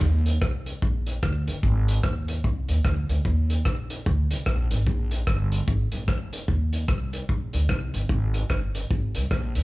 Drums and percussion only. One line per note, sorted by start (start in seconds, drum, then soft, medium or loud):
0.01 kick loud
0.26 closed hi-hat loud
0.42 kick loud
0.42 cross-stick loud
0.66 closed hi-hat medium
0.82 kick loud
1.07 closed hi-hat medium
1.23 kick loud
1.23 cross-stick loud
1.48 closed hi-hat medium
1.63 kick loud
1.88 closed hi-hat loud
2.03 kick loud
2.03 cross-stick loud
2.28 closed hi-hat loud
2.44 kick loud
2.68 closed hi-hat medium
2.85 kick loud
2.85 cross-stick loud
3.09 closed hi-hat medium
3.25 kick loud
3.50 closed hi-hat medium
3.65 kick loud
3.65 cross-stick loud
3.90 closed hi-hat loud
4.06 kick loud
4.31 closed hi-hat loud
4.46 kick medium
4.46 cross-stick loud
4.71 closed hi-hat medium
4.87 kick loud
5.11 closed hi-hat medium
5.27 kick loud
5.27 cross-stick loud
5.52 closed hi-hat medium
5.68 kick loud
5.92 closed hi-hat medium
6.08 kick loud
6.08 cross-stick loud
6.33 closed hi-hat medium
6.48 kick loud
6.73 closed hi-hat medium
6.88 kick loud
6.88 cross-stick loud
7.13 closed hi-hat loud
7.29 kick loud
7.53 closed hi-hat loud
7.69 kick loud
7.69 cross-stick loud
7.94 closed hi-hat medium
8.09 kick loud
8.34 closed hi-hat medium
8.50 kick loud
8.50 cross-stick loud
8.75 closed hi-hat loud
8.91 kick loud
9.15 closed hi-hat loud
9.31 kick loud
9.31 cross-stick loud
9.55 closed hi-hat medium